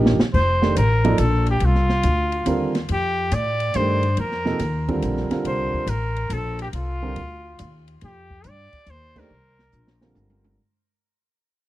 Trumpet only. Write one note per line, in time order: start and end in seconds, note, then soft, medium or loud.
0.34 0.73 C5 medium
0.78 1.21 A#4 medium
1.20 1.48 A4 medium
1.50 1.67 G4 medium
1.65 2.77 F4 loud
2.92 3.36 G4 loud
3.34 3.77 D5 loud
3.76 4.18 C5 loud
4.20 5.00 A#4 loud
5.47 5.91 C5 medium
5.89 6.34 A#4 medium
6.33 6.60 A4 medium
6.62 6.68 G4 medium
6.76 7.85 F4 medium
8.04 8.50 G4 loud
8.48 8.92 D5 loud
8.90 9.21 C5 loud
9.19 10.03 A#4 medium